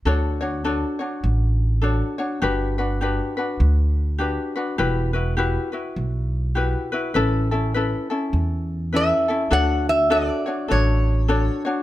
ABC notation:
X:1
M:4/4
L:1/8
Q:"Swing" 1/4=101
K:D
V:1 name="Resonator guitar played with a steel bar"
z8 | z8 | z8 | z6 e2 |
f e d2 c3 z |]
V:2 name="Ukulele"
[DFAc] [DFc] [DFAc] [DFc]3 [DFAc] [DFc] | [DFGB] [DFB] [DFGB] [DFB]3 [DFGB] [DFB] | [EFGB] [EFB] [EFGB] [EFB]3 [EFGB] [EFB] | [CEAB] [CEA] [CEAB] [CEA]3 [CEAB] [CEA] |
[DFAc]2 [DFAc] [DFc] [DFAc]2 [DFAc] [DFc] |]
V:3 name="Upright bass" clef=bass
D,,4 A,,,4 | G,,,4 D,,4 | E,,,4 B,,,4 | A,,,4 E,,4 |
D,,4 A,,,4 |]